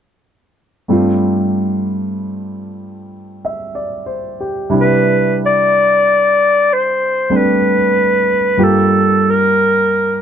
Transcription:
0.88 4.73 G2 soft
0.88 4.68 G3 soft
0.88 4.73 A3 soft
0.88 4.73 C4 soft
0.88 4.73 F4 soft
3.45 3.94 E5 soft
3.75 4.35 D5 soft
4.06 4.57 C5 soft
4.40 4.90 G4 soft
4.70 8.57 C3 soft
4.70 7.28 G3 soft
4.70 7.30 D4 soft
4.70 8.58 E4 soft
4.80 5.37 B4 medium
5.46 6.74 D5 medium
6.73 7.38 C5 medium
7.30 8.56 G3 soft
7.30 8.59 A3 soft
7.30 8.59 C4 soft
7.30 8.59 D4 soft
7.36 8.65 B4 medium
8.57 10.22 G2 soft
8.57 10.22 G3 soft
8.57 10.22 A#3 soft
8.57 10.22 F4 soft
8.57 10.22 G4 soft
8.63 9.32 A4 medium
9.30 10.22 A#4 medium

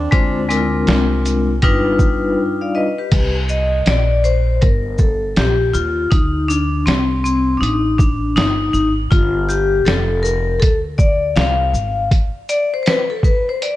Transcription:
0.00 0.74 D4 medium
0.11 0.83 D2 loud
0.11 0.39 G#3 medium
0.11 0.39 C4 medium
0.11 0.39 D4 medium
0.11 0.39 F4 medium
0.11 0.40 C5 medium
0.11 kick loud
0.11 closed hi-hat medium
0.49 1.48 G#3 medium
0.49 1.49 C4 medium
0.49 1.49 D4 medium
0.49 0.58 E4 soft
0.49 1.49 A#4 medium
0.49 closed hi-hat medium
0.49 shaker soft
0.57 1.53 F4 medium
0.87 1.58 C2 medium
0.87 snare loud
0.87 closed hi-hat medium
1.26 closed hi-hat soft
1.26 shaker soft
1.62 2.33 G1 medium
1.62 2.84 G3 medium
1.62 2.84 D4 medium
1.62 2.85 D#4 medium
1.62 2.85 F4 medium
1.62 2.38 B4 loud
1.62 kick medium
1.62 closed hi-hat medium
1.99 kick medium
1.99 shaker medium
2.61 2.74 D5 soft
2.61 2.74 F5 medium
2.75 2.97 B4 medium
2.75 2.97 D#5 medium
2.98 3.34 G4 soft
2.98 3.34 B4 medium
3.12 3.83 C2 loud
3.12 kick loud
3.12 closed hi-hat medium
3.12 crash medium
3.49 3.84 D#5 medium
3.49 shaker medium
3.86 4.58 A#1 medium
3.86 4.25 D5 medium
3.86 snare loud
3.86 closed hi-hat medium
4.24 4.63 C5 medium
4.24 shaker soft
4.61 5.33 G1 medium
4.61 4.96 A#4 medium
4.61 kick loud
4.61 closed hi-hat medium
4.98 5.38 A4 medium
4.98 kick medium
4.98 shaker soft
5.36 5.72 A#1 medium
5.36 5.76 G4 medium
5.36 snare loud
5.36 closed hi-hat medium
5.74 6.10 D#2 medium
5.74 6.09 F4 medium
5.74 shaker soft
6.11 6.83 D2 loud
6.11 6.50 D#4 medium
6.11 kick loud
6.11 closed hi-hat medium
6.48 6.84 D4 medium
6.48 shaker medium
6.86 7.58 C2 medium
6.86 7.23 C4 medium
6.86 snare loud
6.86 closed hi-hat medium
7.24 7.57 C4 medium
7.24 shaker soft
7.57 8.33 A1 medium
7.57 7.62 D4 medium
7.57 8.00 D#4 medium
7.63 closed hi-hat medium
7.98 8.34 D4 medium
7.98 kick loud
7.98 shaker medium
8.36 8.72 G1 medium
8.36 8.72 D#4 medium
8.36 snare loud
8.36 closed hi-hat medium
8.73 9.10 G#1 medium
8.73 8.90 D#4 medium
8.73 shaker soft
9.11 9.83 G1 loud
9.11 9.50 F4 loud
9.11 kick loud
9.11 closed hi-hat medium
9.49 9.88 G4 loud
9.49 shaker medium
9.85 10.58 F1 medium
9.85 10.21 A4 medium
9.85 snare loud
9.85 closed hi-hat medium
10.23 10.58 A#4 medium
10.23 shaker soft
10.60 11.33 D2 medium
10.60 10.77 A4 loud
10.60 kick medium
10.60 closed hi-hat medium
10.98 11.37 D5 medium
10.98 kick loud
10.98 shaker medium
11.36 11.72 C2 loud
11.36 12.07 F5 medium
11.36 snare loud
11.36 closed hi-hat medium
11.73 12.09 G#1 medium
11.73 shaker soft
12.11 kick loud
12.11 closed hi-hat medium
12.49 12.71 D5 loud
12.49 closed hi-hat medium
12.49 shaker medium
12.74 12.82 C5 medium
12.83 12.86 C5 medium
12.83 closed hi-hat medium
12.87 13.11 B4 medium
12.87 snare loud
13.10 13.24 A4 medium
13.23 13.46 B4 medium
13.23 kick medium
13.23 shaker soft
13.49 13.63 C5 medium
13.62 13.76 D5 medium
13.62 closed hi-hat medium

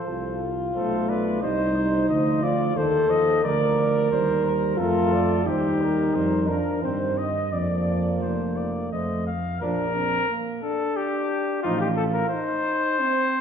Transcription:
0.00 0.48 F3 soft
0.00 0.48 C5 soft
0.07 0.71 C2 soft
0.07 1.39 F4 medium
0.07 0.51 A4 soft
0.75 1.41 B1 medium
0.75 1.45 A3 medium
0.75 1.11 A4 soft
0.75 1.10 C5 medium
1.09 1.42 B4 medium
1.09 1.43 D5 medium
1.41 2.08 C2 medium
1.41 2.12 G3 medium
1.41 2.45 D#4 medium
1.41 2.08 C5 medium
1.41 1.77 D#5 medium
1.76 2.09 C5 medium
2.09 2.75 D2 medium
2.09 2.79 F3 medium
2.09 2.45 C5 soft
2.09 2.44 D#5 medium
2.43 2.76 F4 medium
2.43 2.78 D5 medium
2.43 2.79 D5 medium
2.76 3.42 D#2 medium
2.76 3.13 D#3 medium
2.76 3.44 A4 medium
2.76 3.11 C5 medium
2.76 3.44 C5 soft
3.10 3.44 F3 medium
3.10 3.43 D#5 medium
3.43 4.10 D2 medium
3.43 4.14 F3 medium
3.43 4.76 A#4 medium
3.43 3.82 A#4 medium
3.43 4.10 D5 medium
3.80 4.16 D5 medium
4.11 4.78 D#2 medium
4.11 4.81 G3 medium
4.11 4.44 C5 medium
4.11 4.82 C5 medium
4.45 4.77 A#4 medium
4.77 5.45 F2 medium
4.77 5.49 A3 medium
4.77 5.44 F4 medium
4.77 5.48 A4 medium
4.77 5.15 A#4 medium
5.13 5.47 D5 medium
5.46 6.13 D#2 medium
5.46 6.15 G3 soft
5.46 6.49 D#4 medium
5.46 6.16 G4 medium
5.46 5.83 C5 medium
5.81 6.84 A#4 medium
6.15 6.58 F2 medium
6.15 6.51 G3 medium
6.15 6.50 C5 medium
6.48 6.85 F3 medium
6.48 6.82 D4 medium
6.48 6.83 A#4 medium
6.83 7.54 G2 medium
6.83 7.28 D#3 medium
6.83 7.27 C4 medium
6.83 7.21 C5 soft
6.83 7.19 C5 medium
7.18 7.54 D#5 medium
7.18 7.56 D#5 medium
7.52 8.22 F2 soft
7.52 9.23 F3 medium
7.52 8.94 A#3 soft
7.52 8.15 D5 soft
7.52 8.64 D5 soft
8.21 8.91 F1 soft
8.21 8.58 C5 soft
8.56 8.92 D5 soft
8.92 9.60 F2 soft
8.92 9.30 A3 soft
8.92 9.27 C5 soft
8.92 9.26 D#5 soft
9.27 9.60 F5 soft
9.61 10.18 A#1 medium
9.61 9.86 F3 medium
9.61 9.86 D4 soft
9.61 9.94 D4 medium
9.61 10.45 A#4 medium
9.96 10.29 C4 soft
10.30 10.62 A#3 soft
10.62 11.66 D4 medium
10.62 10.97 A4 medium
10.96 11.62 G4 medium
11.62 12.21 A1 medium
11.62 11.88 F3 medium
11.62 11.88 D#4 soft
11.62 11.80 F4 medium
11.62 12.35 F4 medium
11.81 11.89 G4 medium
11.96 12.04 A4 medium
12.13 12.28 A#4 medium
12.28 13.41 C5 medium
12.34 13.02 D#4 medium
13.00 13.41 C4 medium

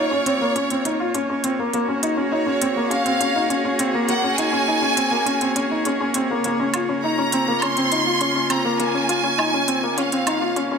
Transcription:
0.00 10.78 A#3 medium
0.00 1.73 F4 medium
0.00 1.44 C#5 loud
0.00 10.78 C#5 medium
0.11 0.21 C#4 medium
0.26 0.36 C4 medium
0.26 closed hi-hat medium
0.41 0.51 A#3 medium
0.56 0.66 C#4 medium
0.56 closed hi-hat soft
0.70 0.81 C4 medium
0.70 closed hi-hat soft
0.85 0.95 D#4 medium
0.85 closed hi-hat medium
1.00 1.10 F4 medium
1.14 1.24 C#4 medium
1.14 closed hi-hat soft
1.30 1.40 C#4 medium
1.44 1.54 C4 medium
1.44 closed hi-hat medium
1.59 1.69 A#3 medium
1.73 1.84 A#3 medium
1.73 closed hi-hat soft
1.79 6.45 F#4 medium
1.88 1.98 C#4 medium
1.99 2.13 D#4 medium
1.99 8.33 G#4 medium
1.99 closed hi-hat medium
2.17 2.27 C#4 medium
2.32 2.42 D#4 medium
2.32 2.87 C#5 medium
2.46 2.57 C#4 medium
2.62 2.72 C4 medium
2.62 closed hi-hat medium
2.76 2.86 A#3 medium
2.90 3.00 C#4 medium
2.90 3.80 F5 loud
2.90 closed hi-hat soft
3.06 3.16 C4 medium
3.06 closed hi-hat soft
3.20 3.30 C#4 medium
3.20 closed hi-hat medium
3.35 3.45 D#4 medium
3.50 3.60 C#4 medium
3.50 closed hi-hat soft
3.65 3.75 C#4 medium
3.79 3.90 C4 medium
3.79 closed hi-hat medium
3.94 4.04 A#3 medium
4.08 4.19 A#3 medium
4.08 4.36 F#5 loud
4.08 closed hi-hat soft
4.23 4.33 C#4 medium
4.38 4.48 D#4 medium
4.38 6.15 G#5 loud
4.38 closed hi-hat medium
4.53 4.63 C#4 medium
4.68 4.78 D#4 medium
4.82 4.92 C#4 medium
4.97 5.07 C4 medium
4.97 closed hi-hat medium
5.11 5.21 A#3 medium
5.26 5.36 C#4 medium
5.26 closed hi-hat soft
5.41 5.51 C4 medium
5.41 closed hi-hat soft
5.56 5.66 C#4 medium
5.56 closed hi-hat medium
5.71 5.81 D#4 medium
5.85 5.96 C#4 medium
5.85 closed hi-hat soft
6.01 6.10 C#4 medium
6.14 6.25 C4 medium
6.14 closed hi-hat medium
6.30 6.40 A#3 medium
6.44 10.78 C#3 medium
6.44 6.55 A#3 medium
6.44 closed hi-hat soft
6.60 6.69 C#4 medium
6.74 6.84 F4 medium
6.74 10.78 F4 medium
6.74 closed hi-hat medium
6.74 low woodblock medium
6.89 6.99 C#4 medium
7.04 7.13 D#4 medium
7.04 7.59 A#5 medium
7.18 7.28 C#4 medium
7.32 7.43 C4 medium
7.32 closed hi-hat medium
7.48 7.58 A#3 medium
7.61 7.72 C#4 medium
7.61 8.50 C6 loud
7.61 closed hi-hat soft
7.61 low woodblock medium
7.77 7.87 C4 medium
7.77 closed hi-hat soft
7.92 8.02 D#4 medium
7.92 closed hi-hat medium
8.06 8.16 F4 medium
8.21 8.31 C#4 medium
8.21 closed hi-hat soft
8.35 8.45 C#4 medium
8.50 8.60 C4 medium
8.50 8.80 A#5 loud
8.50 closed hi-hat medium
8.50 low woodblock medium
8.65 8.75 A#3 medium
8.79 8.89 A#3 medium
8.79 9.98 G#5 loud
8.79 closed hi-hat soft
8.95 9.04 C#4 medium
9.09 9.19 F4 medium
9.09 closed hi-hat medium
9.24 9.34 C#4 medium
9.38 9.48 D#4 medium
9.38 low woodblock medium
9.54 9.63 C#4 medium
9.68 9.78 C4 medium
9.68 closed hi-hat medium
9.83 9.93 A#3 medium
9.98 10.07 C#4 medium
9.98 10.78 F5 medium
9.98 closed hi-hat soft
10.12 10.22 C4 medium
10.12 closed hi-hat soft
10.27 10.37 D#4 medium
10.27 closed hi-hat medium
10.27 low woodblock medium
10.42 10.51 F4 medium
10.56 10.66 C#4 medium
10.56 closed hi-hat soft
10.71 10.78 C#4 medium

